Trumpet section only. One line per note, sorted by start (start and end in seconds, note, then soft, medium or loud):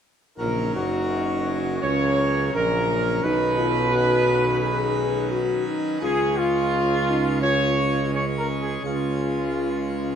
0.39 0.72 A#4 medium
0.75 1.79 F#4 medium
1.82 2.50 C#5 medium
2.55 3.20 A#4 medium
3.24 5.68 B4 loud
6.03 6.35 G#4 loud
6.38 7.43 F4 loud
7.42 8.08 C#5 loud
8.14 8.25 C#5 medium
8.38 8.48 A#4 medium
8.62 8.83 G#4 medium
8.86 10.15 F4 medium